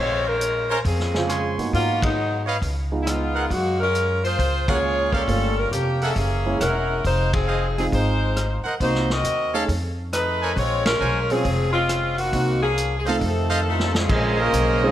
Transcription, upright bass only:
0, 0, Header, 1, 3, 480
1, 0, Start_track
1, 0, Key_signature, -5, "minor"
1, 0, Tempo, 441501
1, 1884, Time_signature, 4, 2, 24, 8
1, 16215, End_track
2, 0, Start_track
2, 0, Title_t, "Upright bass"
2, 0, Program_c, 0, 32
2, 0, Note_on_c, 0, 34, 66
2, 880, Note_off_c, 0, 34, 0
2, 923, Note_on_c, 0, 41, 69
2, 1677, Note_off_c, 0, 41, 0
2, 1718, Note_on_c, 0, 43, 61
2, 1871, Note_off_c, 0, 43, 0
2, 1884, Note_on_c, 0, 44, 69
2, 2802, Note_off_c, 0, 44, 0
2, 2842, Note_on_c, 0, 37, 70
2, 3762, Note_off_c, 0, 37, 0
2, 3807, Note_on_c, 0, 42, 67
2, 4725, Note_off_c, 0, 42, 0
2, 4766, Note_on_c, 0, 37, 68
2, 5685, Note_off_c, 0, 37, 0
2, 5735, Note_on_c, 0, 31, 70
2, 6180, Note_off_c, 0, 31, 0
2, 6212, Note_on_c, 0, 29, 64
2, 6658, Note_off_c, 0, 29, 0
2, 6692, Note_on_c, 0, 30, 68
2, 7138, Note_off_c, 0, 30, 0
2, 7179, Note_on_c, 0, 28, 66
2, 7622, Note_off_c, 0, 28, 0
2, 7660, Note_on_c, 0, 29, 70
2, 8572, Note_off_c, 0, 29, 0
2, 8614, Note_on_c, 0, 32, 73
2, 9365, Note_off_c, 0, 32, 0
2, 9571, Note_on_c, 0, 36, 68
2, 10017, Note_off_c, 0, 36, 0
2, 10043, Note_on_c, 0, 39, 64
2, 10493, Note_off_c, 0, 39, 0
2, 10527, Note_on_c, 0, 41, 74
2, 11445, Note_off_c, 0, 41, 0
2, 11483, Note_on_c, 0, 34, 76
2, 11932, Note_off_c, 0, 34, 0
2, 11966, Note_on_c, 0, 35, 68
2, 12414, Note_off_c, 0, 35, 0
2, 12444, Note_on_c, 0, 29, 77
2, 13363, Note_off_c, 0, 29, 0
2, 13400, Note_on_c, 0, 36, 73
2, 14320, Note_off_c, 0, 36, 0
2, 14361, Note_on_c, 0, 41, 72
2, 15279, Note_off_c, 0, 41, 0
2, 15322, Note_on_c, 0, 34, 80
2, 15769, Note_off_c, 0, 34, 0
2, 15800, Note_on_c, 0, 35, 79
2, 16215, Note_off_c, 0, 35, 0
2, 16215, End_track
3, 0, Start_track
3, 0, Title_t, "Muted upright bass strokes"
3, 9402, Note_on_c, 9, 29, 32
3, 9511, Note_off_c, 9, 29, 0
3, 16215, End_track
0, 0, End_of_file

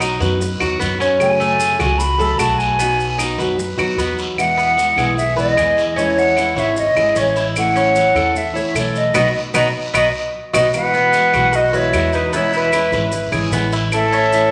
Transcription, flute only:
0, 0, Header, 1, 2, 480
1, 0, Start_track
1, 0, Key_signature, 4, "major"
1, 0, Tempo, 397614
1, 1450, Time_signature, 4, 2, 24, 8
1, 17521, End_track
2, 0, Start_track
2, 0, Title_t, "Flute"
2, 0, Program_c, 0, 73
2, 1465, Note_on_c, 0, 80, 98
2, 2392, Note_on_c, 0, 83, 101
2, 2411, Note_off_c, 0, 80, 0
2, 2875, Note_on_c, 0, 81, 91
2, 2894, Note_off_c, 0, 83, 0
2, 3117, Note_on_c, 0, 80, 83
2, 3135, Note_off_c, 0, 81, 0
2, 3843, Note_off_c, 0, 80, 0
2, 5289, Note_on_c, 0, 78, 106
2, 6201, Note_off_c, 0, 78, 0
2, 6246, Note_on_c, 0, 76, 90
2, 6471, Note_off_c, 0, 76, 0
2, 6494, Note_on_c, 0, 75, 96
2, 7163, Note_off_c, 0, 75, 0
2, 7228, Note_on_c, 0, 73, 90
2, 7463, Note_on_c, 0, 78, 99
2, 7481, Note_off_c, 0, 73, 0
2, 7958, Note_on_c, 0, 76, 85
2, 7976, Note_off_c, 0, 78, 0
2, 8175, Note_off_c, 0, 76, 0
2, 8182, Note_on_c, 0, 75, 88
2, 8665, Note_on_c, 0, 73, 86
2, 8683, Note_off_c, 0, 75, 0
2, 9017, Note_off_c, 0, 73, 0
2, 9153, Note_on_c, 0, 78, 106
2, 10108, Note_on_c, 0, 76, 90
2, 10126, Note_off_c, 0, 78, 0
2, 10578, Note_off_c, 0, 76, 0
2, 10610, Note_on_c, 0, 73, 76
2, 10831, Note_on_c, 0, 75, 80
2, 10849, Note_off_c, 0, 73, 0
2, 11046, Note_off_c, 0, 75, 0
2, 11053, Note_on_c, 0, 75, 90
2, 11205, Note_off_c, 0, 75, 0
2, 11534, Note_on_c, 0, 75, 81
2, 11685, Note_off_c, 0, 75, 0
2, 12016, Note_on_c, 0, 75, 88
2, 12166, Note_off_c, 0, 75, 0
2, 12739, Note_on_c, 0, 75, 89
2, 12888, Note_off_c, 0, 75, 0
2, 12987, Note_on_c, 0, 78, 106
2, 13948, Note_on_c, 0, 75, 94
2, 13966, Note_off_c, 0, 78, 0
2, 14184, Note_on_c, 0, 73, 93
2, 14202, Note_off_c, 0, 75, 0
2, 14668, Note_on_c, 0, 71, 81
2, 14686, Note_off_c, 0, 73, 0
2, 14898, Note_off_c, 0, 71, 0
2, 14911, Note_on_c, 0, 73, 84
2, 15124, Note_off_c, 0, 73, 0
2, 15159, Note_on_c, 0, 71, 78
2, 16056, Note_off_c, 0, 71, 0
2, 16847, Note_on_c, 0, 76, 116
2, 17521, Note_off_c, 0, 76, 0
2, 17521, End_track
0, 0, End_of_file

